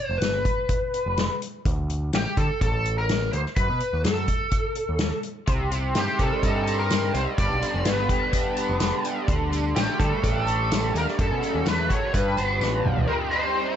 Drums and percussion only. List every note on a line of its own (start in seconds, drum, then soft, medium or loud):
0.22 snare loud
0.22 closed hi-hat medium
0.45 kick medium
0.45 closed hi-hat medium
0.69 kick medium
0.69 closed hi-hat medium
0.94 closed hi-hat medium
1.17 snare medium
1.17 closed hi-hat medium
1.42 closed hi-hat medium
1.66 kick loud
1.66 closed hi-hat medium
1.90 closed hi-hat medium
2.13 snare loud
2.13 closed hi-hat medium
2.37 kick medium
2.37 closed hi-hat medium
2.61 kick medium
2.61 closed hi-hat medium
2.86 closed hi-hat soft
3.09 snare loud
3.09 closed hi-hat medium
3.33 closed hi-hat medium
3.46 snare soft
3.56 kick medium
3.56 closed hi-hat medium
3.80 closed hi-hat medium
4.05 snare loud
4.05 closed hi-hat medium
4.28 kick medium
4.28 closed hi-hat medium
4.51 kick medium
4.51 closed hi-hat medium
4.75 closed hi-hat medium
4.99 snare loud
4.99 closed hi-hat medium
5.23 closed hi-hat medium
5.47 kick medium
5.47 closed hi-hat medium
5.47 tambourine soft
5.72 closed hi-hat medium
5.72 tambourine medium
5.95 snare loud
5.95 closed hi-hat medium
5.95 tambourine medium
6.19 kick medium
6.19 closed hi-hat medium
6.19 tambourine soft
6.43 kick medium
6.43 closed hi-hat medium
6.43 tambourine medium
6.67 closed hi-hat medium
6.67 tambourine medium
6.90 snare medium
6.90 closed hi-hat medium
6.90 tambourine medium
7.14 closed hi-hat medium
7.14 tambourine medium
7.38 kick medium
7.38 closed hi-hat medium
7.38 tambourine soft
7.62 closed hi-hat medium
7.62 tambourine medium
7.85 snare loud
7.85 closed hi-hat medium
7.85 tambourine medium
8.09 kick medium
8.09 closed hi-hat medium
8.09 tambourine soft
8.33 kick medium
8.33 closed hi-hat medium
8.33 tambourine medium
8.57 closed hi-hat medium
8.57 tambourine medium
8.80 snare medium
8.80 closed hi-hat medium
8.80 tambourine medium
9.04 closed hi-hat medium
9.04 tambourine medium
9.28 kick loud
9.28 closed hi-hat medium
9.28 tambourine soft
9.53 closed hi-hat soft
9.53 tambourine medium
9.76 snare loud
9.76 closed hi-hat medium
9.76 tambourine medium
10.00 kick medium
10.00 closed hi-hat medium
10.00 tambourine soft
10.24 kick medium
10.24 closed hi-hat medium
10.24 tambourine medium
10.47 closed hi-hat medium
10.47 tambourine medium
10.71 snare loud
10.71 closed hi-hat medium
10.71 tambourine medium
10.95 closed hi-hat medium
10.95 tambourine medium
11.08 snare soft
11.19 kick loud
11.19 closed hi-hat medium
11.19 tambourine soft
11.43 closed hi-hat soft
11.43 tambourine medium
11.66 snare loud
11.66 closed hi-hat medium
11.66 tambourine medium
11.89 kick medium
11.89 closed hi-hat medium
11.89 tambourine soft
12.14 kick medium
12.14 closed hi-hat medium
12.14 tambourine medium
12.37 closed hi-hat medium
12.37 tambourine medium
12.61 snare soft
12.61 tambourine medium
12.86 mid tom medium
12.97 floor tom medium